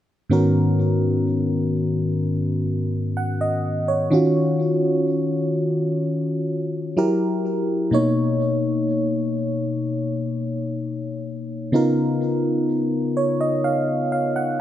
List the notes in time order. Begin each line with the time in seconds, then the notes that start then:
0.29 G#2 D#3 B3 C#4 F#4 A#4
3.17 F#5
3.41 D#5
3.88 C#5
4.10 D#3 C#4 F4 F#4
6.97 F#3 E4 G4 A#4
7.91 B2 A#3 D#4 C#5
11.72 C#3 B3 D#4 F4 A#4
13.17 C#5
13.41 D#5
13.64 F5
14.12 F5
14.36 F#5